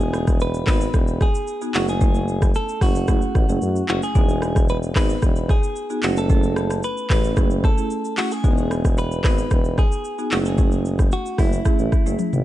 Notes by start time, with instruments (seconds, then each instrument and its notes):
Already playing: tuba E1, marimba B3 D#4 F#4 G#4, clean electric guitar G#4
0.00 shaker
0.13 cross-stick, shaker
0.27 kick, cross-stick, shaker
0.40 clean electric guitar B4, shaker
0.54 shaker
0.67 tuba G#1, marimba B3 D#4 F#4 G#4, clean electric guitar B4, kick, cross-stick, clap, open hi-hat, shaker
0.81 shaker
0.94 tuba E1, kick, cross-stick, shaker
1.07 shaker
1.21 clean electric guitar G#4, kick, cross-stick, shaker
1.35 shaker
1.47 shaker
1.61 marimba B3 D#4 F#4 G#4, shaker
1.74 tuba F#1, marimba A3 C#4 E4 G#4, clean electric guitar F#4, clap, open hi-hat, shaker
1.88 clean electric guitar G#4, shaker
2.01 marimba A3 C#4 E4 G#4, kick, shaker
2.15 shaker
2.28 shaker
2.42 kick, cross-stick, shaker
2.55 clean electric guitar A4, shaker
2.69 shaker
2.81 tuba F#1, marimba A3 C#4 E4 G#4, clean electric guitar F#4, kick, cross-stick, open hi-hat, shaker
2.95 shaker
3.08 marimba A3 C#4 E4 G#4, kick, cross-stick, shaker
3.22 shaker
3.35 tuba A1, kick, cross-stick, shaker
3.49 tuba F#1, marimba A3 C#4 E4 G#4, shaker
3.62 tuba F#2, shaker
3.76 shaker
3.88 tuba F#1, marimba A3 C#4 E4 G#4, clean electric guitar F#4, clap, shaker
4.03 clean electric guitar G#4, shaker
4.15 tuba E1, marimba B3 D#4 F#4 G#4, kick, shaker
4.29 shaker
4.42 cross-stick, shaker
4.56 kick, cross-stick, shaker
4.69 clean electric guitar B4, shaker
4.83 shaker
4.96 tuba G#1, marimba B3 D#4 F#4 G#4, clean electric guitar B4, kick, cross-stick, clap, open hi-hat, shaker
5.09 shaker
5.22 tuba E1, kick, cross-stick, shaker
5.36 shaker
5.49 clean electric guitar G#4, kick, cross-stick, shaker
5.63 shaker
5.76 shaker
5.90 marimba B3 D#4 F#4 G#4, shaker
6.03 tuba F#1, marimba A3 C#4 E4 G#4, clean electric guitar F#4, clap, open hi-hat, shaker
6.17 clean electric guitar A4, shaker
6.30 marimba A3 C#4 E4 A4, kick, shaker
6.43 shaker
6.56 cross-stick, shaker
6.71 cross-stick, shaker
6.83 clean electric guitar B4, shaker
6.97 shaker
7.10 tuba A1, marimba A3 C#4 E4 G#4, clean electric guitar B4, kick, cross-stick, clap, open hi-hat, shaker
7.24 shaker
7.37 tuba F#1, marimba A3 C#4 E4 G#4, kick, cross-stick, shaker
7.50 shaker
7.64 clean electric guitar A4, kick, cross-stick, shaker
7.77 marimba A3 C#4 E4 G#4, shaker
7.90 shaker
8.05 shaker
8.17 marimba A3 C#4 E4 G#4, clean electric guitar F#4, clap, open hi-hat, shaker
8.31 clean electric guitar G#4, shaker
8.44 tuba E1, marimba B3 D#4 F#4 G#4, kick, shaker
8.58 shaker
8.71 cross-stick, shaker
8.85 kick, cross-stick, shaker
8.98 clean electric guitar B4, shaker
9.12 shaker
9.24 tuba G#1, marimba B3 D#4 F#4 G#4, clean electric guitar B4, kick, cross-stick, clap, open hi-hat, shaker
9.38 shaker
9.51 tuba E1, kick, cross-stick, shaker
9.65 shaker
9.78 clean electric guitar G#4, kick, cross-stick, shaker
9.92 shaker
10.05 shaker
10.18 marimba B3 D#4 F#4 G#4, shaker
10.31 tuba F#1, marimba A3 C#4 E4 G#4, clean electric guitar F#4, clap, open hi-hat, shaker
10.45 clean electric guitar G#4, shaker
10.58 marimba A3 C#4 E4 G#4, kick, shaker
10.72 shaker
10.85 shaker
10.99 kick, cross-stick, shaker
11.12 clean electric guitar F#4, shaker
11.26 shaker
11.38 tuba F#1, marimba A3 C#4 E4 G#4, clean electric guitar E4, kick, cross-stick, open hi-hat, shaker
11.52 shaker
11.65 marimba A3 C#4 E4 G#4, kick, cross-stick, shaker
11.79 tuba A1, shaker
11.92 kick, cross-stick, shaker
12.06 tuba F#1, marimba A3 C#4 E4 G#4, shaker
12.19 high tom, shaker
12.33 tuba G#1, mid tom, shaker